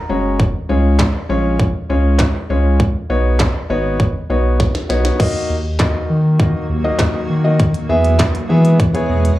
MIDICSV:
0, 0, Header, 1, 5, 480
1, 0, Start_track
1, 0, Tempo, 600000
1, 319, Time_signature, 4, 2, 24, 8
1, 7513, End_track
2, 0, Start_track
2, 0, Title_t, "Grand piano"
2, 0, Program_c, 0, 0
2, 74, Note_on_c, 0, 56, 90
2, 76, Note_on_c, 0, 61, 82
2, 76, Note_on_c, 0, 82, 68
2, 78, Note_on_c, 0, 66, 79
2, 78, Note_on_c, 0, 73, 95
2, 301, Note_off_c, 0, 82, 0
2, 316, Note_off_c, 0, 56, 0
2, 317, Note_off_c, 0, 61, 0
2, 318, Note_off_c, 0, 66, 0
2, 318, Note_off_c, 0, 73, 0
2, 552, Note_on_c, 0, 56, 93
2, 553, Note_on_c, 0, 61, 79
2, 555, Note_on_c, 0, 65, 81
2, 556, Note_on_c, 0, 73, 99
2, 832, Note_off_c, 0, 56, 0
2, 832, Note_off_c, 0, 61, 0
2, 833, Note_off_c, 0, 65, 0
2, 833, Note_off_c, 0, 73, 0
2, 1033, Note_on_c, 0, 56, 91
2, 1034, Note_on_c, 0, 61, 85
2, 1037, Note_on_c, 0, 65, 84
2, 1038, Note_on_c, 0, 73, 104
2, 1312, Note_off_c, 0, 56, 0
2, 1312, Note_off_c, 0, 61, 0
2, 1314, Note_off_c, 0, 65, 0
2, 1314, Note_off_c, 0, 73, 0
2, 1515, Note_on_c, 0, 56, 90
2, 1517, Note_on_c, 0, 61, 86
2, 1518, Note_on_c, 0, 65, 80
2, 1520, Note_on_c, 0, 73, 101
2, 1793, Note_off_c, 0, 56, 0
2, 1794, Note_off_c, 0, 61, 0
2, 1794, Note_off_c, 0, 65, 0
2, 1795, Note_off_c, 0, 73, 0
2, 1997, Note_on_c, 0, 56, 90
2, 1999, Note_on_c, 0, 61, 80
2, 2000, Note_on_c, 0, 65, 79
2, 2001, Note_on_c, 0, 73, 98
2, 2238, Note_off_c, 0, 56, 0
2, 2239, Note_off_c, 0, 61, 0
2, 2239, Note_off_c, 0, 65, 0
2, 2240, Note_off_c, 0, 73, 0
2, 2477, Note_on_c, 0, 59, 85
2, 2478, Note_on_c, 0, 63, 78
2, 2479, Note_on_c, 0, 66, 81
2, 2480, Note_on_c, 0, 73, 102
2, 2754, Note_off_c, 0, 59, 0
2, 2754, Note_off_c, 0, 63, 0
2, 2755, Note_off_c, 0, 66, 0
2, 2755, Note_off_c, 0, 73, 0
2, 2958, Note_on_c, 0, 59, 94
2, 2958, Note_on_c, 0, 63, 84
2, 2960, Note_on_c, 0, 66, 88
2, 2961, Note_on_c, 0, 73, 103
2, 3234, Note_off_c, 0, 59, 0
2, 3234, Note_off_c, 0, 63, 0
2, 3235, Note_off_c, 0, 66, 0
2, 3236, Note_off_c, 0, 73, 0
2, 3437, Note_on_c, 0, 59, 89
2, 3439, Note_on_c, 0, 63, 81
2, 3440, Note_on_c, 0, 66, 81
2, 3441, Note_on_c, 0, 73, 97
2, 3714, Note_off_c, 0, 59, 0
2, 3715, Note_off_c, 0, 63, 0
2, 3715, Note_off_c, 0, 66, 0
2, 3716, Note_off_c, 0, 73, 0
2, 3914, Note_on_c, 0, 59, 85
2, 3915, Note_on_c, 0, 63, 78
2, 3916, Note_on_c, 0, 66, 81
2, 3917, Note_on_c, 0, 73, 92
2, 4143, Note_off_c, 0, 63, 0
2, 4145, Note_off_c, 0, 66, 0
2, 4154, Note_on_c, 0, 58, 98
2, 4155, Note_on_c, 0, 63, 90
2, 4156, Note_off_c, 0, 59, 0
2, 4157, Note_on_c, 0, 66, 88
2, 4158, Note_off_c, 0, 73, 0
2, 4158, Note_on_c, 0, 75, 105
2, 4433, Note_off_c, 0, 58, 0
2, 4433, Note_off_c, 0, 63, 0
2, 4434, Note_off_c, 0, 66, 0
2, 4434, Note_off_c, 0, 75, 0
2, 4634, Note_on_c, 0, 58, 75
2, 4636, Note_on_c, 0, 63, 67
2, 4636, Note_on_c, 0, 66, 68
2, 4638, Note_on_c, 0, 75, 82
2, 4912, Note_off_c, 0, 58, 0
2, 4913, Note_off_c, 0, 63, 0
2, 4914, Note_off_c, 0, 66, 0
2, 4914, Note_off_c, 0, 75, 0
2, 5114, Note_on_c, 0, 58, 82
2, 5114, Note_on_c, 0, 63, 73
2, 5115, Note_on_c, 0, 66, 71
2, 5117, Note_on_c, 0, 75, 88
2, 5323, Note_off_c, 0, 58, 0
2, 5324, Note_off_c, 0, 63, 0
2, 5324, Note_off_c, 0, 66, 0
2, 5325, Note_off_c, 0, 75, 0
2, 5474, Note_on_c, 0, 58, 93
2, 5474, Note_on_c, 0, 63, 84
2, 5475, Note_on_c, 0, 66, 79
2, 5476, Note_on_c, 0, 75, 98
2, 5752, Note_off_c, 0, 58, 0
2, 5752, Note_off_c, 0, 63, 0
2, 5753, Note_off_c, 0, 66, 0
2, 5753, Note_off_c, 0, 75, 0
2, 5953, Note_on_c, 0, 58, 84
2, 5953, Note_on_c, 0, 63, 80
2, 5956, Note_on_c, 0, 66, 82
2, 5957, Note_on_c, 0, 75, 94
2, 6076, Note_off_c, 0, 58, 0
2, 6076, Note_off_c, 0, 63, 0
2, 6077, Note_off_c, 0, 66, 0
2, 6078, Note_off_c, 0, 75, 0
2, 6313, Note_on_c, 0, 59, 95
2, 6315, Note_on_c, 0, 64, 90
2, 6316, Note_on_c, 0, 68, 90
2, 6317, Note_on_c, 0, 76, 107
2, 6592, Note_off_c, 0, 59, 0
2, 6593, Note_off_c, 0, 64, 0
2, 6593, Note_off_c, 0, 68, 0
2, 6594, Note_off_c, 0, 76, 0
2, 6794, Note_on_c, 0, 59, 94
2, 6795, Note_on_c, 0, 64, 90
2, 6797, Note_on_c, 0, 68, 83
2, 6799, Note_on_c, 0, 76, 100
2, 7003, Note_off_c, 0, 59, 0
2, 7004, Note_off_c, 0, 64, 0
2, 7005, Note_off_c, 0, 68, 0
2, 7006, Note_off_c, 0, 76, 0
2, 7152, Note_on_c, 0, 59, 90
2, 7154, Note_on_c, 0, 64, 83
2, 7155, Note_on_c, 0, 68, 82
2, 7156, Note_on_c, 0, 73, 94
2, 7431, Note_off_c, 0, 59, 0
2, 7432, Note_off_c, 0, 64, 0
2, 7433, Note_off_c, 0, 68, 0
2, 7433, Note_off_c, 0, 73, 0
2, 7513, End_track
3, 0, Start_track
3, 0, Title_t, "Ambient pad"
3, 0, Program_c, 1, 92
3, 4160, Note_on_c, 1, 51, 78
3, 4160, Note_on_c, 1, 58, 71
3, 4160, Note_on_c, 1, 66, 82
3, 4161, Note_on_c, 1, 54, 72
3, 6060, Note_off_c, 1, 51, 0
3, 6060, Note_off_c, 1, 54, 0
3, 6060, Note_off_c, 1, 58, 0
3, 6060, Note_off_c, 1, 66, 0
3, 6077, Note_on_c, 1, 47, 78
3, 6078, Note_on_c, 1, 59, 73
3, 6079, Note_on_c, 1, 56, 71
3, 6079, Note_on_c, 1, 68, 88
3, 7513, Note_off_c, 1, 47, 0
3, 7513, Note_off_c, 1, 56, 0
3, 7513, Note_off_c, 1, 59, 0
3, 7513, Note_off_c, 1, 68, 0
3, 7513, End_track
4, 0, Start_track
4, 0, Title_t, "Sub bass"
4, 0, Program_c, 2, 38
4, 77, Note_on_c, 2, 30, 89
4, 430, Note_off_c, 2, 30, 0
4, 557, Note_on_c, 2, 37, 101
4, 910, Note_off_c, 2, 37, 0
4, 1037, Note_on_c, 2, 34, 92
4, 1389, Note_off_c, 2, 34, 0
4, 1517, Note_on_c, 2, 37, 92
4, 1870, Note_off_c, 2, 37, 0
4, 1999, Note_on_c, 2, 37, 87
4, 2351, Note_off_c, 2, 37, 0
4, 2477, Note_on_c, 2, 35, 97
4, 2830, Note_off_c, 2, 35, 0
4, 2958, Note_on_c, 2, 32, 97
4, 3310, Note_off_c, 2, 32, 0
4, 3437, Note_on_c, 2, 35, 94
4, 3790, Note_off_c, 2, 35, 0
4, 3918, Note_on_c, 2, 35, 91
4, 4094, Note_off_c, 2, 35, 0
4, 4398, Note_on_c, 2, 39, 101
4, 4750, Note_off_c, 2, 39, 0
4, 4878, Note_on_c, 2, 51, 95
4, 5230, Note_off_c, 2, 51, 0
4, 5356, Note_on_c, 2, 39, 97
4, 5533, Note_off_c, 2, 39, 0
4, 5837, Note_on_c, 2, 51, 93
4, 6190, Note_off_c, 2, 51, 0
4, 6318, Note_on_c, 2, 40, 95
4, 6670, Note_off_c, 2, 40, 0
4, 6799, Note_on_c, 2, 52, 97
4, 7151, Note_off_c, 2, 52, 0
4, 7279, Note_on_c, 2, 40, 105
4, 7455, Note_off_c, 2, 40, 0
4, 7513, End_track
5, 0, Start_track
5, 0, Title_t, "Drums"
5, 317, Note_on_c, 9, 36, 115
5, 397, Note_off_c, 9, 36, 0
5, 793, Note_on_c, 9, 38, 87
5, 796, Note_on_c, 9, 39, 104
5, 797, Note_on_c, 9, 36, 115
5, 873, Note_off_c, 9, 38, 0
5, 876, Note_off_c, 9, 39, 0
5, 877, Note_off_c, 9, 36, 0
5, 1276, Note_on_c, 9, 36, 118
5, 1356, Note_off_c, 9, 36, 0
5, 1752, Note_on_c, 9, 38, 88
5, 1755, Note_on_c, 9, 39, 116
5, 1759, Note_on_c, 9, 36, 110
5, 1832, Note_off_c, 9, 38, 0
5, 1835, Note_off_c, 9, 39, 0
5, 1839, Note_off_c, 9, 36, 0
5, 2239, Note_on_c, 9, 36, 117
5, 2319, Note_off_c, 9, 36, 0
5, 2716, Note_on_c, 9, 38, 86
5, 2719, Note_on_c, 9, 36, 115
5, 2719, Note_on_c, 9, 39, 107
5, 2796, Note_off_c, 9, 38, 0
5, 2799, Note_off_c, 9, 36, 0
5, 2799, Note_off_c, 9, 39, 0
5, 3198, Note_on_c, 9, 36, 111
5, 3278, Note_off_c, 9, 36, 0
5, 3679, Note_on_c, 9, 36, 111
5, 3679, Note_on_c, 9, 38, 57
5, 3759, Note_off_c, 9, 36, 0
5, 3759, Note_off_c, 9, 38, 0
5, 3799, Note_on_c, 9, 38, 60
5, 3879, Note_off_c, 9, 38, 0
5, 3919, Note_on_c, 9, 38, 85
5, 3999, Note_off_c, 9, 38, 0
5, 4039, Note_on_c, 9, 38, 86
5, 4119, Note_off_c, 9, 38, 0
5, 4158, Note_on_c, 9, 36, 113
5, 4159, Note_on_c, 9, 49, 94
5, 4238, Note_off_c, 9, 36, 0
5, 4239, Note_off_c, 9, 49, 0
5, 4634, Note_on_c, 9, 38, 89
5, 4637, Note_on_c, 9, 39, 108
5, 4638, Note_on_c, 9, 36, 115
5, 4714, Note_off_c, 9, 38, 0
5, 4717, Note_off_c, 9, 39, 0
5, 4718, Note_off_c, 9, 36, 0
5, 5117, Note_on_c, 9, 36, 111
5, 5197, Note_off_c, 9, 36, 0
5, 5592, Note_on_c, 9, 38, 94
5, 5595, Note_on_c, 9, 39, 113
5, 5598, Note_on_c, 9, 36, 109
5, 5672, Note_off_c, 9, 38, 0
5, 5675, Note_off_c, 9, 39, 0
5, 5678, Note_off_c, 9, 36, 0
5, 6077, Note_on_c, 9, 36, 117
5, 6077, Note_on_c, 9, 42, 75
5, 6157, Note_off_c, 9, 36, 0
5, 6157, Note_off_c, 9, 42, 0
5, 6195, Note_on_c, 9, 42, 53
5, 6275, Note_off_c, 9, 42, 0
5, 6436, Note_on_c, 9, 42, 52
5, 6516, Note_off_c, 9, 42, 0
5, 6554, Note_on_c, 9, 38, 86
5, 6555, Note_on_c, 9, 42, 75
5, 6557, Note_on_c, 9, 39, 113
5, 6558, Note_on_c, 9, 36, 120
5, 6634, Note_off_c, 9, 38, 0
5, 6635, Note_off_c, 9, 42, 0
5, 6637, Note_off_c, 9, 39, 0
5, 6638, Note_off_c, 9, 36, 0
5, 6679, Note_on_c, 9, 42, 52
5, 6759, Note_off_c, 9, 42, 0
5, 6918, Note_on_c, 9, 42, 52
5, 6998, Note_off_c, 9, 42, 0
5, 7037, Note_on_c, 9, 36, 117
5, 7038, Note_on_c, 9, 42, 66
5, 7117, Note_off_c, 9, 36, 0
5, 7118, Note_off_c, 9, 42, 0
5, 7157, Note_on_c, 9, 42, 47
5, 7237, Note_off_c, 9, 42, 0
5, 7399, Note_on_c, 9, 42, 56
5, 7479, Note_off_c, 9, 42, 0
5, 7513, End_track
0, 0, End_of_file